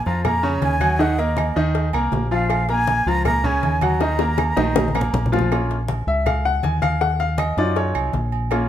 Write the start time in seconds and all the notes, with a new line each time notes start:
0.06 F2 F3 F4 F5 A#5, high conga
0.25 A#3 A#4 A#5, cowbell, high conga, low conga, low agogo, claves
0.43 C#3 C#4 C#5, high conga
0.62 D#2 G#5, cowbell, high conga, low agogo
0.81 F#3 F#4 F#5, cowbell, high conga, low agogo, claves
0.99 D#3 D#4 D#5 F#5, cowbell, high conga
1.18 A#3 A#4 D#5 A#5, high conga, low agogo
1.37 cowbell, high conga, low agogo, claves
1.56 D#2 D#3 D#4 D#5, cowbell
1.74 cowbell, high conga, low agogo
1.93 C2 A#3 A#4 A#5, high conga, low agogo, claves
2.12 A#1, cowbell, high conga, low timbale
2.31 F3 F4 F5, high conga, low agogo
2.50 cowbell, high conga, low agogo, claves
2.69 A#3 A#4 G#5 A#5, cowbell, high conga
2.87 cowbell, high conga, low agogo
3.06 C#2 F3 F4 F5 A#5, high conga
3.25 A#3 A#4 A#5, cowbell, high conga, low conga, low agogo, claves
3.44 C#3 C#4 C#5 G#5, high conga, low conga
3.63 D#2, cowbell, high conga, low agogo
3.81 F#3 F#4 F#5 A#5, cowbell, high conga, low agogo, claves
4.00 D#3 D#4 D#5, cowbell, high bongo, high conga, high timbale
4.19 A#3 A#4 A#5, high bongo, high conga, high timbale, low agogo
4.38 cowbell, high bongo, high conga, low agogo, claves
4.56 A#1 D#3 D#4 D#5, cowbell, low bongo, low timbale
4.76 cowbell, low bongo, high conga, low timbale, low agogo
4.88 high conga
4.95 A#3 A#4 A#5, low bongo, low agogo, claves
5.01 low conga
5.13 A#1, cowbell, low bongo, low conga
5.26 low conga
5.32 F3 F4 F5, low bongo, low timbale, low agogo
5.39 low conga
5.51 A#3 C#4 F4, cowbell, high conga, low agogo, claves
5.69 cowbell, high conga
5.88 cowbell, high conga, low agogo
6.07 C#2 E5, high conga
6.26 F5, cowbell, high conga, low conga, low agogo, claves
6.44 F#5, high conga
6.63 D#2 G#5, cowbell, high conga, low agogo
6.82 F5, cowbell, high conga, low agogo, claves
7.01 F#5, cowbell, high conga
7.20 F5, high conga, low agogo
7.38 D#5, cowbell, high conga, low agogo, claves
7.57 F#2 F#3 D#4 F4 D5, cowbell
7.76 C#5, cowbell, high conga, low agogo
7.95 C2, high conga, low agogo, claves
8.13 A#1, cowbell, high conga
8.32 high conga, low agogo
8.51 A#3 C#4 F4, cowbell, high conga, low agogo, claves